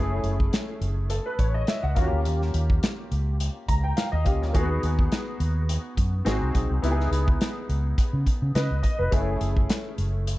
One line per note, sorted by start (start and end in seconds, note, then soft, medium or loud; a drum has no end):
0.00 0.19 F#1 medium
0.00 1.92 A3 medium
0.00 1.92 C#4 medium
0.00 1.93 E4 medium
0.00 1.09 G#4 medium
0.23 0.47 F#1 medium
0.23 closed hi-hat medium
0.40 kick medium
0.53 snare loud
0.53 closed hi-hat medium
0.81 1.18 F#1 medium
0.81 closed hi-hat medium
1.10 1.25 A4 medium
1.10 closed hi-hat medium
1.26 1.38 B4 medium
1.39 1.63 A1 medium
1.39 1.54 C#5 medium
1.39 kick medium
1.39 closed hi-hat medium
1.54 1.67 D#5 medium
1.67 1.83 E5 medium
1.67 snare loud
1.67 closed hi-hat medium
1.83 1.96 C#2 medium
1.83 2.11 F#5 medium
1.95 2.09 D#2 medium
1.95 4.21 A#3 medium
1.95 4.22 C#4 medium
1.95 4.22 F4 medium
1.95 2.04 F#4 medium
1.95 kick medium
1.95 closed hi-hat medium
2.04 4.24 G4 medium
2.13 2.26 D2 medium
2.25 2.49 D#2 loud
2.25 closed hi-hat medium
2.42 snare soft
2.54 2.78 D#2 medium
2.54 closed hi-hat medium
2.70 kick medium
2.83 snare loud
2.83 closed hi-hat medium
3.12 3.48 C#2 medium
3.12 closed hi-hat medium
3.40 closed hi-hat medium
3.68 3.92 C#2 medium
3.68 3.83 A#5 medium
3.68 kick medium
3.68 closed hi-hat medium
3.84 3.96 G5 medium
3.97 4.11 F5 medium
3.97 snare medium
3.97 closed hi-hat medium
4.12 4.26 D#2 medium
4.12 4.51 D#5 medium
4.24 4.42 C#2 medium
4.24 4.54 A#3 soft
4.24 4.54 C#4 soft
4.24 4.54 F4 soft
4.24 4.55 G4 medium
4.24 kick medium
4.24 closed hi-hat medium
4.42 4.53 D2 medium
4.42 snare soft
4.53 4.78 D#2 loud
4.53 4.61 A3 medium
4.53 6.23 D#4 medium
4.53 6.23 F#4 medium
4.53 6.23 G#4 medium
4.53 kick medium
4.53 closed hi-hat medium
4.60 6.26 B3 medium
4.83 5.07 D#2 medium
4.83 closed hi-hat medium
4.99 kick medium
5.12 snare loud
5.12 closed hi-hat medium
5.40 5.76 D#2 medium
5.40 closed hi-hat medium
5.69 closed hi-hat medium
5.97 6.21 F#2 medium
5.97 kick medium
5.97 closed hi-hat medium
6.25 6.39 G#1 medium
6.25 6.83 C4 medium
6.25 6.81 D#4 medium
6.25 6.83 F#4 medium
6.25 6.84 G#4 medium
6.25 snare medium
6.25 closed hi-hat medium
6.42 6.53 C2 medium
6.55 6.68 B1 medium
6.55 kick medium
6.55 closed hi-hat medium
6.70 6.81 C2 medium
6.82 7.07 C#2 medium
6.82 8.51 B3 medium
6.82 8.51 D#4 medium
6.82 8.52 E4 medium
6.82 6.91 G4 medium
6.82 closed hi-hat medium
6.91 8.56 G#4 medium
7.00 snare soft
7.11 7.35 C#2 medium
7.11 closed hi-hat medium
7.28 kick medium
7.41 snare loud
7.41 closed hi-hat medium
7.69 7.93 C#2 medium
7.69 closed hi-hat medium
7.98 kick medium
7.98 closed hi-hat medium
8.13 8.24 C#3 medium
8.26 kick medium
8.26 closed hi-hat medium
8.42 8.53 C#3 medium
8.55 8.68 C#3 medium
8.55 8.82 B4 medium
8.55 8.81 D#5 medium
8.55 snare medium
8.55 closed hi-hat medium
8.71 8.82 C#2 medium
8.83 8.98 D#5 medium
8.83 kick medium
8.83 closed hi-hat medium
8.99 9.10 F1 medium
8.99 9.26 B4 medium
9.11 9.36 F#1 medium
9.11 10.38 A3 medium
9.11 10.38 C#4 medium
9.11 10.38 E4 medium
9.11 10.38 G#4 medium
9.11 kick medium
9.11 closed hi-hat medium
9.41 9.65 F#1 medium
9.41 closed hi-hat medium
9.57 kick medium
9.70 snare loud
9.70 closed hi-hat medium
9.98 10.35 F#1 medium
9.98 closed hi-hat medium
10.27 closed hi-hat medium